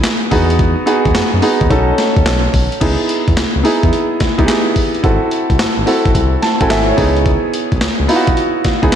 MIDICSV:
0, 0, Header, 1, 4, 480
1, 0, Start_track
1, 0, Key_signature, 4, "minor"
1, 0, Tempo, 555556
1, 511, Time_signature, 4, 2, 24, 8
1, 7736, End_track
2, 0, Start_track
2, 0, Title_t, "Grand piano"
2, 0, Program_c, 0, 0
2, 0, Control_c, 0, 64, 127
2, 0, Note_on_c, 0, 59, 86
2, 0, Note_on_c, 0, 63, 75
2, 0, Note_on_c, 0, 64, 83
2, 0, Note_on_c, 0, 68, 93
2, 268, Note_off_c, 0, 59, 0
2, 268, Note_on_c, 0, 59, 89
2, 273, Note_off_c, 0, 63, 0
2, 273, Note_on_c, 0, 63, 77
2, 274, Note_on_c, 0, 66, 83
2, 278, Note_off_c, 0, 68, 0
2, 278, Note_on_c, 0, 68, 95
2, 283, Control_c, 0, 64, 0
2, 289, Note_off_c, 0, 64, 0
2, 452, Control_c, 0, 64, 127
2, 685, Note_off_c, 0, 59, 0
2, 687, Note_off_c, 0, 63, 0
2, 688, Note_off_c, 0, 66, 0
2, 690, Note_off_c, 0, 68, 0
2, 743, Note_on_c, 0, 59, 88
2, 747, Note_on_c, 0, 63, 80
2, 751, Note_on_c, 0, 66, 80
2, 753, Note_on_c, 0, 68, 100
2, 1156, Note_off_c, 0, 59, 0
2, 1158, Note_off_c, 0, 63, 0
2, 1159, Note_off_c, 0, 66, 0
2, 1161, Note_off_c, 0, 68, 0
2, 1226, Note_on_c, 0, 59, 82
2, 1230, Note_on_c, 0, 63, 77
2, 1234, Note_on_c, 0, 66, 78
2, 1236, Note_on_c, 0, 68, 97
2, 1457, Note_off_c, 0, 63, 0
2, 1461, Note_off_c, 0, 66, 0
2, 1468, Note_on_c, 0, 61, 87
2, 1469, Note_off_c, 0, 59, 0
2, 1470, Note_on_c, 0, 63, 79
2, 1474, Note_off_c, 0, 68, 0
2, 1474, Note_on_c, 0, 66, 75
2, 1478, Note_on_c, 0, 69, 96
2, 1482, Control_c, 0, 64, 0
2, 1649, Control_c, 0, 64, 127
2, 2253, Note_off_c, 0, 61, 0
2, 2254, Note_off_c, 0, 63, 0
2, 2257, Note_off_c, 0, 66, 0
2, 2258, Note_off_c, 0, 69, 0
2, 2424, Note_on_c, 0, 59, 81
2, 2429, Note_on_c, 0, 63, 72
2, 2433, Note_on_c, 0, 64, 74
2, 2436, Note_on_c, 0, 68, 84
2, 2443, Control_c, 0, 64, 0
2, 2594, Control_c, 0, 64, 127
2, 3014, Note_off_c, 0, 59, 0
2, 3016, Note_off_c, 0, 63, 0
2, 3018, Note_off_c, 0, 64, 0
2, 3020, Note_off_c, 0, 68, 0
2, 3142, Note_on_c, 0, 59, 85
2, 3146, Note_on_c, 0, 63, 76
2, 3150, Note_on_c, 0, 64, 85
2, 3154, Note_on_c, 0, 68, 95
2, 3618, Note_off_c, 0, 59, 0
2, 3620, Note_off_c, 0, 63, 0
2, 3622, Note_off_c, 0, 64, 0
2, 3624, Note_off_c, 0, 68, 0
2, 3786, Note_on_c, 0, 59, 89
2, 3790, Note_on_c, 0, 63, 84
2, 3794, Note_on_c, 0, 64, 84
2, 3796, Note_on_c, 0, 67, 75
2, 3831, Note_off_c, 0, 67, 0
2, 3852, Note_on_c, 0, 68, 94
2, 4250, Note_off_c, 0, 59, 0
2, 4252, Note_off_c, 0, 63, 0
2, 4254, Note_off_c, 0, 64, 0
2, 4283, Note_off_c, 0, 68, 0
2, 4346, Note_on_c, 0, 60, 77
2, 4350, Note_on_c, 0, 64, 75
2, 4354, Note_on_c, 0, 66, 77
2, 4357, Note_on_c, 0, 69, 86
2, 4364, Control_c, 0, 64, 0
2, 4492, Control_c, 0, 64, 127
2, 4935, Note_off_c, 0, 60, 0
2, 4937, Note_off_c, 0, 64, 0
2, 4939, Note_off_c, 0, 66, 0
2, 4940, Note_off_c, 0, 69, 0
2, 5064, Note_on_c, 0, 60, 81
2, 5067, Note_on_c, 0, 64, 80
2, 5071, Note_on_c, 0, 66, 79
2, 5076, Note_on_c, 0, 69, 92
2, 5539, Note_off_c, 0, 60, 0
2, 5540, Note_off_c, 0, 64, 0
2, 5542, Note_off_c, 0, 66, 0
2, 5545, Note_off_c, 0, 69, 0
2, 5549, Note_on_c, 0, 81, 82
2, 5698, Note_off_c, 0, 81, 0
2, 5706, Note_on_c, 0, 60, 86
2, 5710, Note_on_c, 0, 64, 84
2, 5710, Note_on_c, 0, 80, 71
2, 5711, Note_on_c, 0, 66, 79
2, 5717, Note_on_c, 0, 69, 94
2, 5786, Note_off_c, 0, 80, 0
2, 5788, Note_on_c, 0, 76, 76
2, 5938, Note_off_c, 0, 76, 0
2, 5951, Note_on_c, 0, 73, 85
2, 6015, Note_off_c, 0, 64, 0
2, 6021, Note_on_c, 0, 59, 88
2, 6026, Note_on_c, 0, 63, 81
2, 6028, Note_on_c, 0, 64, 75
2, 6029, Note_off_c, 0, 60, 0
2, 6032, Note_off_c, 0, 66, 0
2, 6032, Note_on_c, 0, 68, 100
2, 6035, Note_off_c, 0, 69, 0
2, 6043, Control_c, 0, 64, 0
2, 6194, Control_c, 0, 64, 127
2, 6249, Note_off_c, 0, 73, 0
2, 6810, Note_off_c, 0, 59, 0
2, 6812, Note_off_c, 0, 63, 0
2, 6814, Note_off_c, 0, 64, 0
2, 6815, Note_off_c, 0, 68, 0
2, 6984, Note_on_c, 0, 59, 88
2, 6986, Note_on_c, 0, 63, 83
2, 6991, Note_on_c, 0, 64, 84
2, 6993, Note_on_c, 0, 65, 76
2, 7050, Note_on_c, 0, 66, 94
2, 7067, Note_off_c, 0, 65, 0
2, 7459, Note_off_c, 0, 59, 0
2, 7460, Note_off_c, 0, 63, 0
2, 7462, Note_off_c, 0, 64, 0
2, 7492, Note_off_c, 0, 66, 0
2, 7622, Note_on_c, 0, 59, 83
2, 7626, Note_on_c, 0, 63, 77
2, 7629, Note_on_c, 0, 64, 73
2, 7631, Note_on_c, 0, 68, 100
2, 7736, Note_off_c, 0, 59, 0
2, 7736, Note_off_c, 0, 63, 0
2, 7736, Note_off_c, 0, 64, 0
2, 7736, Note_off_c, 0, 68, 0
2, 7736, End_track
3, 0, Start_track
3, 0, Title_t, "Analog synth bass"
3, 0, Program_c, 1, 38
3, 275, Note_on_c, 1, 40, 103
3, 652, Note_off_c, 1, 40, 0
3, 913, Note_on_c, 1, 39, 83
3, 976, Note_off_c, 1, 39, 0
3, 997, Note_on_c, 1, 42, 53
3, 1060, Note_off_c, 1, 42, 0
3, 1155, Note_on_c, 1, 42, 94
3, 1217, Note_off_c, 1, 42, 0
3, 1393, Note_on_c, 1, 39, 97
3, 1456, Note_off_c, 1, 39, 0
3, 1474, Note_on_c, 1, 35, 105
3, 1662, Note_off_c, 1, 35, 0
3, 1872, Note_on_c, 1, 39, 97
3, 1935, Note_off_c, 1, 39, 0
3, 1957, Note_on_c, 1, 35, 91
3, 2144, Note_off_c, 1, 35, 0
3, 2194, Note_on_c, 1, 35, 90
3, 2319, Note_off_c, 1, 35, 0
3, 2433, Note_on_c, 1, 37, 105
3, 2558, Note_off_c, 1, 37, 0
3, 2832, Note_on_c, 1, 40, 93
3, 2895, Note_off_c, 1, 40, 0
3, 2916, Note_on_c, 1, 37, 48
3, 2978, Note_off_c, 1, 37, 0
3, 3074, Note_on_c, 1, 37, 85
3, 3136, Note_off_c, 1, 37, 0
3, 3314, Note_on_c, 1, 40, 99
3, 3376, Note_off_c, 1, 40, 0
3, 3635, Note_on_c, 1, 37, 49
3, 3698, Note_off_c, 1, 37, 0
3, 3792, Note_on_c, 1, 37, 80
3, 3855, Note_off_c, 1, 37, 0
3, 4354, Note_on_c, 1, 32, 115
3, 4478, Note_off_c, 1, 32, 0
3, 4753, Note_on_c, 1, 36, 92
3, 4816, Note_off_c, 1, 36, 0
3, 4833, Note_on_c, 1, 32, 50
3, 4896, Note_off_c, 1, 32, 0
3, 4990, Note_on_c, 1, 32, 83
3, 5054, Note_off_c, 1, 32, 0
3, 5232, Note_on_c, 1, 32, 83
3, 5295, Note_off_c, 1, 32, 0
3, 5314, Note_on_c, 1, 36, 97
3, 5502, Note_off_c, 1, 36, 0
3, 5711, Note_on_c, 1, 32, 91
3, 5775, Note_off_c, 1, 32, 0
3, 5790, Note_on_c, 1, 32, 90
3, 5980, Note_off_c, 1, 32, 0
3, 6034, Note_on_c, 1, 37, 94
3, 6348, Note_off_c, 1, 37, 0
3, 6671, Note_on_c, 1, 35, 94
3, 6734, Note_off_c, 1, 35, 0
3, 6751, Note_on_c, 1, 37, 55
3, 6815, Note_off_c, 1, 37, 0
3, 6910, Note_on_c, 1, 37, 97
3, 6974, Note_off_c, 1, 37, 0
3, 7152, Note_on_c, 1, 35, 91
3, 7215, Note_off_c, 1, 35, 0
3, 7473, Note_on_c, 1, 37, 46
3, 7536, Note_off_c, 1, 37, 0
3, 7630, Note_on_c, 1, 37, 83
3, 7694, Note_off_c, 1, 37, 0
3, 7736, End_track
4, 0, Start_track
4, 0, Title_t, "Drums"
4, 30, Note_on_c, 9, 38, 123
4, 30, Note_on_c, 9, 42, 76
4, 37, Note_on_c, 9, 39, 98
4, 116, Note_off_c, 9, 42, 0
4, 117, Note_off_c, 9, 38, 0
4, 124, Note_off_c, 9, 39, 0
4, 272, Note_on_c, 9, 46, 78
4, 274, Note_on_c, 9, 36, 88
4, 358, Note_off_c, 9, 46, 0
4, 360, Note_off_c, 9, 36, 0
4, 434, Note_on_c, 9, 42, 50
4, 511, Note_off_c, 9, 42, 0
4, 511, Note_on_c, 9, 42, 68
4, 512, Note_on_c, 9, 36, 120
4, 598, Note_off_c, 9, 42, 0
4, 599, Note_off_c, 9, 36, 0
4, 751, Note_on_c, 9, 42, 67
4, 837, Note_off_c, 9, 42, 0
4, 910, Note_on_c, 9, 42, 51
4, 912, Note_on_c, 9, 36, 92
4, 991, Note_on_c, 9, 38, 103
4, 994, Note_off_c, 9, 42, 0
4, 994, Note_on_c, 9, 42, 58
4, 998, Note_off_c, 9, 36, 0
4, 998, Note_on_c, 9, 39, 86
4, 1077, Note_off_c, 9, 38, 0
4, 1080, Note_off_c, 9, 42, 0
4, 1084, Note_off_c, 9, 39, 0
4, 1230, Note_on_c, 9, 46, 72
4, 1316, Note_off_c, 9, 46, 0
4, 1391, Note_on_c, 9, 42, 52
4, 1393, Note_on_c, 9, 36, 87
4, 1473, Note_off_c, 9, 36, 0
4, 1473, Note_on_c, 9, 36, 93
4, 1474, Note_off_c, 9, 42, 0
4, 1474, Note_on_c, 9, 42, 74
4, 1560, Note_off_c, 9, 36, 0
4, 1560, Note_off_c, 9, 42, 0
4, 1712, Note_on_c, 9, 42, 70
4, 1715, Note_on_c, 9, 38, 67
4, 1798, Note_off_c, 9, 42, 0
4, 1801, Note_off_c, 9, 38, 0
4, 1870, Note_on_c, 9, 42, 53
4, 1871, Note_on_c, 9, 36, 96
4, 1951, Note_off_c, 9, 42, 0
4, 1951, Note_on_c, 9, 38, 124
4, 1951, Note_on_c, 9, 42, 77
4, 1957, Note_off_c, 9, 36, 0
4, 1958, Note_on_c, 9, 39, 102
4, 2037, Note_off_c, 9, 42, 0
4, 2038, Note_off_c, 9, 38, 0
4, 2045, Note_off_c, 9, 39, 0
4, 2192, Note_on_c, 9, 46, 76
4, 2193, Note_on_c, 9, 36, 87
4, 2279, Note_off_c, 9, 46, 0
4, 2280, Note_off_c, 9, 36, 0
4, 2352, Note_on_c, 9, 42, 46
4, 2430, Note_off_c, 9, 42, 0
4, 2430, Note_on_c, 9, 42, 65
4, 2431, Note_on_c, 9, 49, 86
4, 2432, Note_on_c, 9, 36, 108
4, 2517, Note_off_c, 9, 42, 0
4, 2517, Note_off_c, 9, 49, 0
4, 2518, Note_off_c, 9, 36, 0
4, 2671, Note_on_c, 9, 42, 67
4, 2757, Note_off_c, 9, 42, 0
4, 2831, Note_on_c, 9, 36, 91
4, 2831, Note_on_c, 9, 42, 54
4, 2911, Note_on_c, 9, 38, 104
4, 2913, Note_off_c, 9, 42, 0
4, 2913, Note_on_c, 9, 42, 61
4, 2918, Note_off_c, 9, 36, 0
4, 2918, Note_on_c, 9, 39, 79
4, 2997, Note_off_c, 9, 38, 0
4, 3000, Note_off_c, 9, 42, 0
4, 3004, Note_off_c, 9, 39, 0
4, 3152, Note_on_c, 9, 46, 72
4, 3238, Note_off_c, 9, 46, 0
4, 3312, Note_on_c, 9, 42, 53
4, 3313, Note_on_c, 9, 36, 84
4, 3394, Note_off_c, 9, 42, 0
4, 3394, Note_on_c, 9, 42, 77
4, 3399, Note_off_c, 9, 36, 0
4, 3480, Note_off_c, 9, 42, 0
4, 3631, Note_on_c, 9, 42, 62
4, 3634, Note_on_c, 9, 36, 92
4, 3634, Note_on_c, 9, 38, 67
4, 3718, Note_off_c, 9, 42, 0
4, 3720, Note_off_c, 9, 38, 0
4, 3721, Note_off_c, 9, 36, 0
4, 3790, Note_on_c, 9, 42, 59
4, 3791, Note_on_c, 9, 36, 100
4, 3872, Note_off_c, 9, 42, 0
4, 3872, Note_on_c, 9, 38, 112
4, 3872, Note_on_c, 9, 42, 77
4, 3877, Note_off_c, 9, 36, 0
4, 3879, Note_on_c, 9, 39, 107
4, 3958, Note_off_c, 9, 38, 0
4, 3958, Note_off_c, 9, 42, 0
4, 3965, Note_off_c, 9, 39, 0
4, 4112, Note_on_c, 9, 46, 77
4, 4114, Note_on_c, 9, 36, 82
4, 4198, Note_off_c, 9, 46, 0
4, 4200, Note_off_c, 9, 36, 0
4, 4273, Note_on_c, 9, 42, 47
4, 4352, Note_on_c, 9, 36, 117
4, 4353, Note_off_c, 9, 42, 0
4, 4353, Note_on_c, 9, 42, 71
4, 4439, Note_off_c, 9, 36, 0
4, 4440, Note_off_c, 9, 42, 0
4, 4591, Note_on_c, 9, 42, 71
4, 4678, Note_off_c, 9, 42, 0
4, 4752, Note_on_c, 9, 36, 92
4, 4752, Note_on_c, 9, 42, 50
4, 4832, Note_on_c, 9, 38, 110
4, 4835, Note_off_c, 9, 42, 0
4, 4835, Note_on_c, 9, 42, 61
4, 4838, Note_off_c, 9, 36, 0
4, 4839, Note_on_c, 9, 39, 92
4, 4918, Note_off_c, 9, 38, 0
4, 4921, Note_off_c, 9, 42, 0
4, 4925, Note_off_c, 9, 39, 0
4, 5072, Note_on_c, 9, 46, 69
4, 5158, Note_off_c, 9, 46, 0
4, 5231, Note_on_c, 9, 42, 55
4, 5232, Note_on_c, 9, 36, 90
4, 5312, Note_off_c, 9, 36, 0
4, 5312, Note_on_c, 9, 36, 93
4, 5314, Note_off_c, 9, 42, 0
4, 5314, Note_on_c, 9, 42, 82
4, 5398, Note_off_c, 9, 36, 0
4, 5400, Note_off_c, 9, 42, 0
4, 5551, Note_on_c, 9, 42, 69
4, 5554, Note_on_c, 9, 38, 66
4, 5637, Note_off_c, 9, 42, 0
4, 5640, Note_off_c, 9, 38, 0
4, 5708, Note_on_c, 9, 42, 59
4, 5709, Note_on_c, 9, 36, 91
4, 5789, Note_off_c, 9, 42, 0
4, 5789, Note_on_c, 9, 42, 78
4, 5790, Note_on_c, 9, 38, 126
4, 5796, Note_off_c, 9, 36, 0
4, 5797, Note_on_c, 9, 39, 103
4, 5876, Note_off_c, 9, 38, 0
4, 5876, Note_off_c, 9, 42, 0
4, 5883, Note_off_c, 9, 39, 0
4, 6029, Note_on_c, 9, 46, 77
4, 6031, Note_on_c, 9, 36, 92
4, 6115, Note_off_c, 9, 46, 0
4, 6118, Note_off_c, 9, 36, 0
4, 6191, Note_on_c, 9, 42, 48
4, 6269, Note_off_c, 9, 42, 0
4, 6269, Note_on_c, 9, 42, 68
4, 6270, Note_on_c, 9, 36, 116
4, 6356, Note_off_c, 9, 36, 0
4, 6356, Note_off_c, 9, 42, 0
4, 6511, Note_on_c, 9, 42, 70
4, 6597, Note_off_c, 9, 42, 0
4, 6669, Note_on_c, 9, 42, 50
4, 6670, Note_on_c, 9, 36, 93
4, 6749, Note_on_c, 9, 38, 115
4, 6751, Note_off_c, 9, 42, 0
4, 6751, Note_on_c, 9, 42, 60
4, 6755, Note_on_c, 9, 39, 84
4, 6756, Note_off_c, 9, 36, 0
4, 6835, Note_off_c, 9, 38, 0
4, 6837, Note_off_c, 9, 42, 0
4, 6842, Note_off_c, 9, 39, 0
4, 6989, Note_on_c, 9, 46, 81
4, 7076, Note_off_c, 9, 46, 0
4, 7148, Note_on_c, 9, 42, 54
4, 7150, Note_on_c, 9, 36, 96
4, 7232, Note_off_c, 9, 42, 0
4, 7232, Note_on_c, 9, 42, 78
4, 7236, Note_off_c, 9, 36, 0
4, 7318, Note_off_c, 9, 42, 0
4, 7469, Note_on_c, 9, 42, 66
4, 7472, Note_on_c, 9, 36, 90
4, 7472, Note_on_c, 9, 38, 65
4, 7556, Note_off_c, 9, 42, 0
4, 7558, Note_off_c, 9, 36, 0
4, 7558, Note_off_c, 9, 38, 0
4, 7627, Note_on_c, 9, 42, 62
4, 7629, Note_on_c, 9, 36, 93
4, 7708, Note_off_c, 9, 42, 0
4, 7708, Note_on_c, 9, 42, 74
4, 7709, Note_on_c, 9, 38, 126
4, 7715, Note_off_c, 9, 36, 0
4, 7736, Note_off_c, 9, 38, 0
4, 7736, Note_off_c, 9, 42, 0
4, 7736, End_track
0, 0, End_of_file